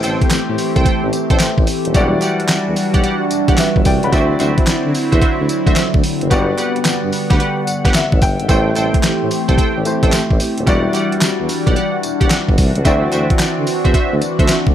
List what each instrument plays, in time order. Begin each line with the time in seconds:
Already playing: analog synth pad E3 A3 C4 G4, grand piano A3 E4 G4 C5
0.03 tuba A1, analog polysynth A4 C5 G5, clap, closed hi-hat, tambourine
0.21 kick, closed hi-hat
0.30 tuba A2, snare, clap, closed hi-hat, tambourine
0.49 tuba A2
0.58 open hi-hat, tambourine
0.76 tuba C2, analog polysynth A4 C5 G5, kick, closed hi-hat
0.85 analog polysynth A4 C5 G5, kick, closed hi-hat
1.04 tuba A1
1.13 closed hi-hat, tambourine
1.30 tuba A1, analog polysynth A4 C5 G5, kick, closed hi-hat
1.39 tuba A1, snare, clap, closed hi-hat, tambourine
1.58 tuba A1, kick
1.67 open hi-hat, tambourine
1.85 tuba D#1, closed hi-hat
1.94 tuba E1, grand piano F#3 E4 F#4 D5, analog synth pad G3 D4 F#4, analog polysynth G4 D5 F#5, kick, closed hi-hat, tambourine
2.01 grand piano G3
2.22 analog polysynth G4 D5 F#5, clap, closed hi-hat, tambourine
2.40 tuba E2, closed hi-hat
2.48 tuba E2, snare, clap, closed hi-hat, tambourine
2.68 tuba E2
2.76 open hi-hat, tambourine
2.94 tuba B1, analog polysynth G4 D5 F#5, kick, closed hi-hat
3.03 analog polysynth G4 D5 F#5, closed hi-hat
3.31 tuba E1, closed hi-hat, tambourine
3.48 tuba E1, analog polysynth G4 D5 F#5, kick, closed hi-hat
3.57 grand piano B4 E5, snare, clap, closed hi-hat, tambourine
3.76 tuba G1, kick
3.85 tuba C2, grand piano D5 G5, kick, open hi-hat, tambourine
4.03 tuba C#2, grand piano F#5 B5, closed hi-hat
4.12 tuba D2, analog synth pad D3 F#3 C4 E4, grand piano C4 E4 F#4 D5, analog polysynth F#4 C5 E5, kick, closed hi-hat, tambourine
4.40 tuba D2, analog polysynth F#4 C5 E5, clap, closed hi-hat, tambourine
4.58 kick, closed hi-hat
4.66 tuba D3, snare, clap, closed hi-hat, tambourine
4.85 tuba D3
4.94 open hi-hat, tambourine
5.12 tuba E2, analog polysynth F#4 C5 E5, kick, closed hi-hat
5.21 analog polysynth F#4 C5 E5, kick, closed hi-hat
5.40 tuba D2
5.49 closed hi-hat, tambourine
5.66 tuba D2, analog polysynth F#4 C5 E5, kick, closed hi-hat
5.76 tuba D2, snare, clap, closed hi-hat, tambourine
5.94 tuba D2, kick
6.04 open hi-hat, tambourine
6.21 tuba F#1, closed hi-hat
6.30 tuba G1, analog synth pad G3 B3 F#5, grand piano B3 F#4 G4 D5, analog polysynth G4 B4 F#5, kick, closed hi-hat, tambourine
6.58 analog polysynth G4 B4 F#5, clap, closed hi-hat, tambourine
6.76 tuba G2, closed hi-hat
6.85 tuba G2, snare, clap, closed hi-hat, tambourine
7.04 tuba G2
7.12 open hi-hat, tambourine
7.30 tuba D2, analog polysynth G4 B4 F#5, kick, snare, closed hi-hat
7.40 analog polysynth G4 B4 F#5, closed hi-hat
7.67 tuba G1, closed hi-hat, tambourine
7.85 tuba G1, analog polysynth G4 B4 F#5, kick, snare, closed hi-hat
7.94 grand piano E5, snare, clap, closed hi-hat, tambourine
8.12 tuba A1, kick
8.22 tuba G1, grand piano G5, kick, open hi-hat, tambourine
8.40 tuba G#1, closed hi-hat
8.48 tuba A1, analog synth pad E3 A3 C4 G4, grand piano A3 E4 G4 C5, analog polysynth A4 C5 G5, kick, closed hi-hat, tambourine
8.76 tuba A1, analog polysynth A4 C5 G5, clap, closed hi-hat, tambourine
8.94 kick, closed hi-hat
9.03 tuba A2, snare, clap, closed hi-hat, tambourine
9.22 tuba A2
9.31 open hi-hat, tambourine
9.48 tuba C2, analog polysynth A4 C5 G5, kick, closed hi-hat
9.58 analog polysynth A4 C5 G5, kick, closed hi-hat
9.77 tuba A1
9.85 grand piano A3 E4 G4 C5, closed hi-hat, tambourine
10.03 tuba A1, analog polysynth A4 C5 G5, kick, closed hi-hat
10.12 tuba A1, snare, clap, closed hi-hat, tambourine
10.30 tuba A1, kick
10.40 open hi-hat, tambourine
10.58 tuba D#1, closed hi-hat
10.66 tuba E1, analog synth pad E3 G3 D4 F#4, grand piano G3 E4 F#4 D5, analog polysynth G4 D5 F#5, kick, closed hi-hat, tambourine
10.94 analog polysynth G4 D5 F#5, clap, closed hi-hat, tambourine
11.12 tuba E2, closed hi-hat
11.21 tuba E2, snare, clap, closed hi-hat, tambourine
11.40 tuba E2
11.49 open hi-hat, tambourine
11.66 tuba B1, analog polysynth G4 D5 F#5, kick, closed hi-hat
11.76 analog polysynth G4 D5 F#5, closed hi-hat
12.03 tuba E1, closed hi-hat, tambourine
12.20 tuba E1, analog polysynth G4 D5 F#5, kick, closed hi-hat
12.30 snare, clap, closed hi-hat, tambourine
12.49 tuba G1, kick
12.58 tuba C2, kick, open hi-hat, tambourine
12.75 tuba C#2, closed hi-hat
12.85 tuba D2, grand piano C4 E4 F#4 D5, analog synth pad C4, analog polysynth F#4 C5 E5, kick, closed hi-hat, tambourine
13.12 tuba D2, analog polysynth F#4 C5 E5, clap, closed hi-hat, tambourine
13.30 kick, closed hi-hat
13.39 tuba D3, snare, clap, closed hi-hat, tambourine
13.58 tuba D3
13.67 open hi-hat, tambourine
13.84 tuba E2, analog polysynth F#4 C5 E5, kick, closed hi-hat
13.94 analog polysynth F#4 C5 E5, kick, closed hi-hat
14.13 tuba D2
14.21 closed hi-hat, tambourine
14.39 tuba D2, analog polysynth F#4 C5 E5, kick, closed hi-hat
14.48 tuba D2, snare, clap, closed hi-hat, tambourine
14.67 tuba D2, kick